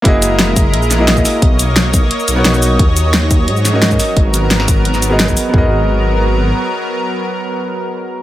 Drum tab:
HH |x-x-x-x-x-x-x-o-|x-x-x-x-x-x-x-o-|x-x-x-x-x-x-x-o-|x-x-x-x-x-x-x-o-|
SH |--x---x--xx--xx-|--x---x--xx--xx-|--x---x--xx--xx-|--x---x--xx--xx-|
SD |----o-----o-o-o-|----o-------o---|----o-----o-o-o-|----oo---o--o---|
FT |----------------|----------------|----------------|----------------|
BD |o-----o------o--|o-----o---------|o-----o------o--|o-----o------o--|

HH |----------------|----------------|
SH |----------------|----------------|
SD |----------------|----------------|
FT |o---------------|----------------|
BD |o---------------|----------------|